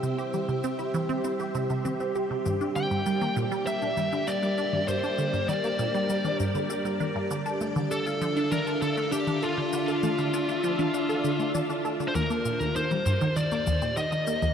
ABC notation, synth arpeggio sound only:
X:1
M:4/4
L:1/16
Q:1/4=99
K:Dm
V:1 name="Synth arpeggio sound" clef=bass
C, G G, C, C E E, C C G C, C, C C G C, | G,, D D, G,, G, B, B,, G, G, D G,, D, G, G, D G,, | G,, D D, G,, G, B, B,, G, G, D G,, D, G, G, D G,, | D, A A, D, D F F, D D A D, A, D D A D, |
D, A A, D, D F F, D D A D, A, D D A D, | [K:Eblyd] E,, B, B,, E,, E, G, G,, E, E, B, E,, B,, E, E, B, E,, |]